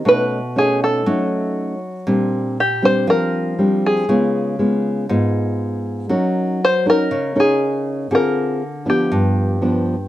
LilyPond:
<<
  \new Staff \with { instrumentName = "Five-string banjo" } { \time 4/4 \key bes \dorian \tempo 4 = 119 b'4 aes'8 a'2 r8 | r4 g'8 c''8 bes'4. aes'8~ | aes'4. r2 r8 | r4 c''8 bes'4 aes'4. |
bes'4. g'2 r8 | }
  \new Staff \with { instrumentName = "Nylon-string guitar" } { \time 4/4 \key bes \dorian << { <a cis' dis'>8 r8 <a cis' dis'>4 <a cis' dis'>4. r8 | <g c' d'>4 r8 <g c' d'>4. <g c' d'>4 | <aes ces' f'>4 <aes ces' f'>4 <aes ces' f'>2 | <des' ees' bes'>4 r8 <des' ees' bes'>4 <des' ees' bes'>4. |
<c' f' aes'>4 r8 <f b d'>4. <f b d'>8 r8 | } \\ { b,2 fis2 | bes,2 f2 | des2 aes,2 | ges2 des2 |
d2 g,2 | } >> }
>>